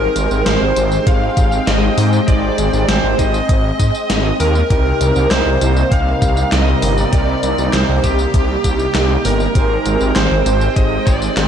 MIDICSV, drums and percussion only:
0, 0, Header, 1, 2, 480
1, 0, Start_track
1, 0, Tempo, 606061
1, 1804, Time_signature, 4, 2, 24, 8
1, 9091, End_track
2, 0, Start_track
2, 0, Title_t, "Drums"
2, 125, Note_on_c, 9, 42, 68
2, 125, Note_on_c, 9, 54, 64
2, 204, Note_off_c, 9, 42, 0
2, 204, Note_off_c, 9, 54, 0
2, 245, Note_on_c, 9, 54, 39
2, 324, Note_off_c, 9, 54, 0
2, 365, Note_on_c, 9, 38, 125
2, 365, Note_on_c, 9, 42, 96
2, 365, Note_on_c, 9, 54, 30
2, 444, Note_off_c, 9, 38, 0
2, 444, Note_off_c, 9, 42, 0
2, 444, Note_off_c, 9, 54, 0
2, 605, Note_on_c, 9, 42, 64
2, 605, Note_on_c, 9, 54, 67
2, 684, Note_off_c, 9, 42, 0
2, 684, Note_off_c, 9, 54, 0
2, 725, Note_on_c, 9, 54, 39
2, 805, Note_off_c, 9, 54, 0
2, 845, Note_on_c, 9, 36, 122
2, 845, Note_on_c, 9, 42, 97
2, 845, Note_on_c, 9, 54, 30
2, 924, Note_off_c, 9, 36, 0
2, 924, Note_off_c, 9, 42, 0
2, 924, Note_off_c, 9, 54, 0
2, 1085, Note_on_c, 9, 36, 111
2, 1085, Note_on_c, 9, 42, 66
2, 1085, Note_on_c, 9, 54, 66
2, 1164, Note_off_c, 9, 36, 0
2, 1164, Note_off_c, 9, 42, 0
2, 1164, Note_off_c, 9, 54, 0
2, 1205, Note_on_c, 9, 54, 39
2, 1284, Note_off_c, 9, 54, 0
2, 1325, Note_on_c, 9, 38, 127
2, 1325, Note_on_c, 9, 42, 92
2, 1325, Note_on_c, 9, 54, 28
2, 1404, Note_off_c, 9, 38, 0
2, 1404, Note_off_c, 9, 42, 0
2, 1404, Note_off_c, 9, 54, 0
2, 1565, Note_on_c, 9, 46, 77
2, 1565, Note_on_c, 9, 54, 68
2, 1644, Note_off_c, 9, 46, 0
2, 1644, Note_off_c, 9, 54, 0
2, 1685, Note_on_c, 9, 54, 39
2, 1764, Note_off_c, 9, 54, 0
2, 1805, Note_on_c, 9, 36, 123
2, 1805, Note_on_c, 9, 42, 93
2, 1805, Note_on_c, 9, 54, 31
2, 1884, Note_off_c, 9, 36, 0
2, 1884, Note_off_c, 9, 42, 0
2, 1884, Note_off_c, 9, 54, 0
2, 2045, Note_on_c, 9, 42, 64
2, 2045, Note_on_c, 9, 54, 66
2, 2124, Note_off_c, 9, 42, 0
2, 2124, Note_off_c, 9, 54, 0
2, 2165, Note_on_c, 9, 54, 40
2, 2244, Note_off_c, 9, 54, 0
2, 2285, Note_on_c, 9, 38, 127
2, 2285, Note_on_c, 9, 42, 91
2, 2285, Note_on_c, 9, 54, 30
2, 2364, Note_off_c, 9, 38, 0
2, 2364, Note_off_c, 9, 42, 0
2, 2364, Note_off_c, 9, 54, 0
2, 2525, Note_on_c, 9, 36, 61
2, 2526, Note_on_c, 9, 42, 61
2, 2526, Note_on_c, 9, 54, 67
2, 2605, Note_off_c, 9, 36, 0
2, 2605, Note_off_c, 9, 42, 0
2, 2605, Note_off_c, 9, 54, 0
2, 2646, Note_on_c, 9, 54, 40
2, 2725, Note_off_c, 9, 54, 0
2, 2765, Note_on_c, 9, 36, 122
2, 2766, Note_on_c, 9, 42, 95
2, 2766, Note_on_c, 9, 54, 31
2, 2845, Note_off_c, 9, 36, 0
2, 2845, Note_off_c, 9, 42, 0
2, 2845, Note_off_c, 9, 54, 0
2, 3005, Note_on_c, 9, 36, 64
2, 3006, Note_on_c, 9, 42, 64
2, 3006, Note_on_c, 9, 54, 69
2, 3085, Note_off_c, 9, 36, 0
2, 3085, Note_off_c, 9, 42, 0
2, 3085, Note_off_c, 9, 54, 0
2, 3126, Note_on_c, 9, 54, 40
2, 3205, Note_off_c, 9, 54, 0
2, 3245, Note_on_c, 9, 38, 118
2, 3245, Note_on_c, 9, 42, 90
2, 3245, Note_on_c, 9, 54, 28
2, 3325, Note_off_c, 9, 38, 0
2, 3325, Note_off_c, 9, 42, 0
2, 3325, Note_off_c, 9, 54, 0
2, 3485, Note_on_c, 9, 46, 78
2, 3485, Note_on_c, 9, 54, 72
2, 3564, Note_off_c, 9, 46, 0
2, 3564, Note_off_c, 9, 54, 0
2, 3606, Note_on_c, 9, 54, 41
2, 3685, Note_off_c, 9, 54, 0
2, 3725, Note_on_c, 9, 36, 118
2, 3726, Note_on_c, 9, 42, 87
2, 3726, Note_on_c, 9, 54, 31
2, 3805, Note_off_c, 9, 36, 0
2, 3805, Note_off_c, 9, 42, 0
2, 3805, Note_off_c, 9, 54, 0
2, 3966, Note_on_c, 9, 42, 63
2, 3966, Note_on_c, 9, 54, 71
2, 4045, Note_off_c, 9, 42, 0
2, 4045, Note_off_c, 9, 54, 0
2, 4086, Note_on_c, 9, 54, 43
2, 4165, Note_off_c, 9, 54, 0
2, 4206, Note_on_c, 9, 38, 123
2, 4206, Note_on_c, 9, 39, 94
2, 4206, Note_on_c, 9, 42, 94
2, 4206, Note_on_c, 9, 54, 31
2, 4285, Note_off_c, 9, 38, 0
2, 4285, Note_off_c, 9, 39, 0
2, 4285, Note_off_c, 9, 42, 0
2, 4285, Note_off_c, 9, 54, 0
2, 4446, Note_on_c, 9, 42, 61
2, 4446, Note_on_c, 9, 54, 71
2, 4525, Note_off_c, 9, 42, 0
2, 4525, Note_off_c, 9, 54, 0
2, 4566, Note_on_c, 9, 54, 40
2, 4645, Note_off_c, 9, 54, 0
2, 4685, Note_on_c, 9, 36, 119
2, 4686, Note_on_c, 9, 42, 90
2, 4686, Note_on_c, 9, 54, 31
2, 4764, Note_off_c, 9, 36, 0
2, 4766, Note_off_c, 9, 42, 0
2, 4766, Note_off_c, 9, 54, 0
2, 4925, Note_on_c, 9, 36, 106
2, 4925, Note_on_c, 9, 42, 60
2, 4925, Note_on_c, 9, 54, 71
2, 5004, Note_off_c, 9, 36, 0
2, 5005, Note_off_c, 9, 42, 0
2, 5005, Note_off_c, 9, 54, 0
2, 5045, Note_on_c, 9, 54, 42
2, 5124, Note_off_c, 9, 54, 0
2, 5165, Note_on_c, 9, 38, 115
2, 5165, Note_on_c, 9, 39, 89
2, 5165, Note_on_c, 9, 42, 86
2, 5165, Note_on_c, 9, 54, 31
2, 5244, Note_off_c, 9, 38, 0
2, 5244, Note_off_c, 9, 39, 0
2, 5244, Note_off_c, 9, 42, 0
2, 5244, Note_off_c, 9, 54, 0
2, 5405, Note_on_c, 9, 46, 81
2, 5405, Note_on_c, 9, 54, 78
2, 5484, Note_off_c, 9, 46, 0
2, 5484, Note_off_c, 9, 54, 0
2, 5525, Note_on_c, 9, 54, 42
2, 5604, Note_off_c, 9, 54, 0
2, 5645, Note_on_c, 9, 36, 115
2, 5645, Note_on_c, 9, 42, 92
2, 5645, Note_on_c, 9, 54, 32
2, 5724, Note_off_c, 9, 36, 0
2, 5724, Note_off_c, 9, 42, 0
2, 5724, Note_off_c, 9, 54, 0
2, 5885, Note_on_c, 9, 42, 61
2, 5885, Note_on_c, 9, 54, 71
2, 5964, Note_off_c, 9, 42, 0
2, 5964, Note_off_c, 9, 54, 0
2, 6005, Note_on_c, 9, 54, 42
2, 6084, Note_off_c, 9, 54, 0
2, 6125, Note_on_c, 9, 38, 121
2, 6125, Note_on_c, 9, 39, 93
2, 6125, Note_on_c, 9, 42, 88
2, 6125, Note_on_c, 9, 54, 32
2, 6204, Note_off_c, 9, 38, 0
2, 6204, Note_off_c, 9, 39, 0
2, 6204, Note_off_c, 9, 42, 0
2, 6204, Note_off_c, 9, 54, 0
2, 6365, Note_on_c, 9, 36, 59
2, 6365, Note_on_c, 9, 42, 59
2, 6365, Note_on_c, 9, 54, 70
2, 6444, Note_off_c, 9, 36, 0
2, 6444, Note_off_c, 9, 42, 0
2, 6444, Note_off_c, 9, 54, 0
2, 6485, Note_on_c, 9, 54, 42
2, 6564, Note_off_c, 9, 54, 0
2, 6605, Note_on_c, 9, 36, 115
2, 6605, Note_on_c, 9, 42, 90
2, 6605, Note_on_c, 9, 54, 31
2, 6684, Note_off_c, 9, 36, 0
2, 6684, Note_off_c, 9, 42, 0
2, 6684, Note_off_c, 9, 54, 0
2, 6845, Note_on_c, 9, 36, 58
2, 6845, Note_on_c, 9, 42, 62
2, 6845, Note_on_c, 9, 54, 72
2, 6924, Note_off_c, 9, 36, 0
2, 6924, Note_off_c, 9, 42, 0
2, 6924, Note_off_c, 9, 54, 0
2, 6965, Note_on_c, 9, 54, 43
2, 7044, Note_off_c, 9, 54, 0
2, 7085, Note_on_c, 9, 38, 114
2, 7085, Note_on_c, 9, 39, 92
2, 7085, Note_on_c, 9, 42, 85
2, 7085, Note_on_c, 9, 54, 32
2, 7164, Note_off_c, 9, 38, 0
2, 7164, Note_off_c, 9, 39, 0
2, 7164, Note_off_c, 9, 42, 0
2, 7164, Note_off_c, 9, 54, 0
2, 7325, Note_on_c, 9, 46, 82
2, 7325, Note_on_c, 9, 54, 77
2, 7404, Note_off_c, 9, 46, 0
2, 7404, Note_off_c, 9, 54, 0
2, 7445, Note_on_c, 9, 54, 43
2, 7525, Note_off_c, 9, 54, 0
2, 7565, Note_on_c, 9, 36, 119
2, 7566, Note_on_c, 9, 42, 96
2, 7566, Note_on_c, 9, 54, 31
2, 7644, Note_off_c, 9, 36, 0
2, 7645, Note_off_c, 9, 42, 0
2, 7645, Note_off_c, 9, 54, 0
2, 7805, Note_on_c, 9, 42, 66
2, 7805, Note_on_c, 9, 54, 68
2, 7885, Note_off_c, 9, 42, 0
2, 7885, Note_off_c, 9, 54, 0
2, 7925, Note_on_c, 9, 54, 40
2, 8004, Note_off_c, 9, 54, 0
2, 8045, Note_on_c, 9, 38, 119
2, 8045, Note_on_c, 9, 39, 101
2, 8045, Note_on_c, 9, 42, 93
2, 8045, Note_on_c, 9, 54, 31
2, 8124, Note_off_c, 9, 38, 0
2, 8124, Note_off_c, 9, 39, 0
2, 8124, Note_off_c, 9, 42, 0
2, 8124, Note_off_c, 9, 54, 0
2, 8285, Note_on_c, 9, 42, 62
2, 8285, Note_on_c, 9, 54, 70
2, 8364, Note_off_c, 9, 42, 0
2, 8364, Note_off_c, 9, 54, 0
2, 8405, Note_on_c, 9, 54, 42
2, 8484, Note_off_c, 9, 54, 0
2, 8525, Note_on_c, 9, 36, 113
2, 8525, Note_on_c, 9, 42, 93
2, 8525, Note_on_c, 9, 54, 32
2, 8604, Note_off_c, 9, 36, 0
2, 8604, Note_off_c, 9, 42, 0
2, 8604, Note_off_c, 9, 54, 0
2, 8764, Note_on_c, 9, 36, 102
2, 8765, Note_on_c, 9, 42, 64
2, 8765, Note_on_c, 9, 54, 72
2, 8844, Note_off_c, 9, 36, 0
2, 8844, Note_off_c, 9, 42, 0
2, 8844, Note_off_c, 9, 54, 0
2, 8884, Note_on_c, 9, 54, 43
2, 8964, Note_off_c, 9, 54, 0
2, 9004, Note_on_c, 9, 38, 114
2, 9004, Note_on_c, 9, 39, 96
2, 9004, Note_on_c, 9, 42, 89
2, 9004, Note_on_c, 9, 54, 30
2, 9083, Note_off_c, 9, 38, 0
2, 9083, Note_off_c, 9, 39, 0
2, 9083, Note_off_c, 9, 42, 0
2, 9083, Note_off_c, 9, 54, 0
2, 9091, End_track
0, 0, End_of_file